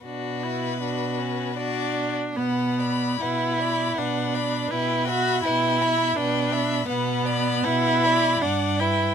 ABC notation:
X:1
M:3/4
L:1/16
Q:1/4=80
K:Bm
V:1 name="Violin"
B8 d3 z | f2 b2 f2 b2 f2 b2 | g2 b2 g2 b2 g2 b2 | f2 b2 f2 b2 f2 g2 |]
V:2 name="Violin"
F4 F4 F3 z | B2 d2 B2 d2 B2 d2 | B2 e2 B2 e2 B2 e2 | B2 d2 B2 d2 d2 B2 |]
V:3 name="Viola"
D2 E2 D2 C2 D4 | B,4 E4 D4 | E2 F2 E4 D4 | B,4 E4 D2 E2 |]
V:4 name="Cello" clef=bass
B,,8- B,,3 z | B,,4 B,,4 B,,4 | B,,4 B,,4 B,,4 | B,,4 B,,4 G,,4 |]